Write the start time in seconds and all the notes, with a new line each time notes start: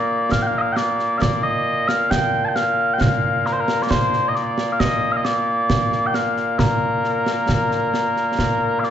Already playing: A#2 A#3 D5
0.31 F5, concert bass drum, snare
0.42 G5
0.47 F5
0.58 D#5 F5
0.72 D5 G5
0.77 snare
0.99 snare
1.18 D5 F5, concert bass drum, snare
1.43 D#5
1.88 F5, snare
2.10 G5, concert bass drum, snare
2.45 G5 A5
2.56 F5, snare
2.93 G5
3.01 F5, concert bass drum, snare
3.46 A#4, snare
3.53 C5
3.60 A#4
3.68 snare
3.83 D5
3.91 C5, concert bass drum, snare
4.13 snare
4.29 D#5
4.35 D5, snare
4.58 snare
4.72 F5
4.80 D#5, concert bass drum, snare
5.12 F5
5.17 D#5
5.24 D5, snare
5.70 concert bass drum, snare
5.92 snare
6.06 G5
6.14 F5, snare
6.37 snare
6.59 A#4, concert bass drum, snare
7.04 snare
7.26 snare
7.49 concert bass drum, snare
7.71 snare
7.94 snare
8.16 snare
8.39 concert bass drum, snare
8.80 F5, snare
8.84 D5